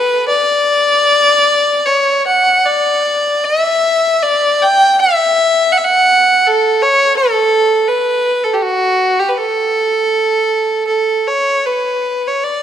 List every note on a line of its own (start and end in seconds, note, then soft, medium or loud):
0.00 0.28 B4 medium
0.28 1.87 D5 loud
1.85 2.26 C#5 medium
2.27 2.68 F#5 medium
2.66 3.46 D5 medium
3.44 4.24 E5 medium
4.23 4.63 D5 medium
4.62 5.01 G5 medium
4.99 5.74 E5 medium
5.72 5.79 F#5 medium
5.78 5.86 E5 medium
5.84 6.49 F#5 medium
6.47 6.84 A4 medium
6.83 7.16 C#5 medium
7.17 7.89 A4 medium
7.88 8.45 B4 medium
8.44 8.55 A4 medium
8.54 8.63 G4 medium
8.62 9.21 F#4 medium
9.19 9.30 G4 medium
9.29 9.39 B4 medium
9.38 10.87 A4 medium
10.87 11.29 A4 medium
11.28 11.67 C#5 medium
11.66 12.29 B4 medium
12.28 12.45 C#5 medium
12.44 12.63 D5 medium